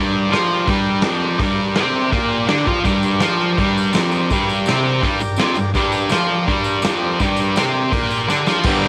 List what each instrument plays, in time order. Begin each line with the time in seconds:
Already playing: distorted electric guitar G2 G3, transistor combo organ G4 A#4 D5
0.29 distorted electric guitar F3 F4, open hi-hat
0.34 snare
0.66 distorted electric guitar G2 G3, kick, open hi-hat
1.01 distorted electric guitar F2 F3, snare, open hi-hat
1.39 distorted electric guitar G2 G3, kick, open hi-hat
1.75 distorted electric guitar C3 C4, snare, open hi-hat
2.12 distorted electric guitar A#2 A#3, kick, open hi-hat
2.48 distorted electric guitar D3 D4, snare, open hi-hat
2.66 distorted electric guitar F3 F4, kick
2.83 distorted electric guitar G2 G3, transistor combo organ G4 A#4 D5, kick, open hi-hat, tambourine
3.03 tambourine
3.20 distorted electric guitar F3 F4, snare, open hi-hat, tambourine
3.41 tambourine
3.58 distorted electric guitar G2 G3, kick, open hi-hat
3.67 snare
3.77 tambourine
3.93 distorted electric guitar F2 F3, snare, open hi-hat, tambourine
4.12 tambourine
4.30 distorted electric guitar G2 G3, kick, open hi-hat, tambourine
4.49 tambourine
4.66 distorted electric guitar C3 C4, snare, open hi-hat, tambourine
5.02 distorted electric guitar G2 G3, kick, open hi-hat
5.20 distorted electric guitar G2, tambourine
5.36 distorted electric guitar F2 F3, snare, open hi-hat, tambourine
5.55 distorted electric guitar G2, tambourine
5.74 distorted electric guitar G2 G3, transistor combo organ G4 A#4 D5, kick, open hi-hat, tambourine
5.92 tambourine
6.09 distorted electric guitar F3 F4, snare, open hi-hat, tambourine
6.28 tambourine
6.47 distorted electric guitar G2 G3, kick, open hi-hat
6.64 tambourine
6.82 distorted electric guitar F2 F3, snare, open hi-hat, tambourine
7.20 distorted electric guitar G2 G3, kick, open hi-hat, tambourine
7.37 tambourine
7.56 distorted electric guitar C3 C4, snare, open hi-hat, tambourine
7.92 distorted electric guitar A#2 A#3, kick, open hi-hat, tambourine
8.03 snare
8.10 tambourine
8.28 distorted electric guitar D3 D4, snare, tambourine
8.46 distorted electric guitar F3 F4, snare, tambourine
8.63 distorted electric guitar G2 D3 G3, transistor combo organ G4, kick, crash
8.68 transistor combo organ A#4 D5
8.82 open hi-hat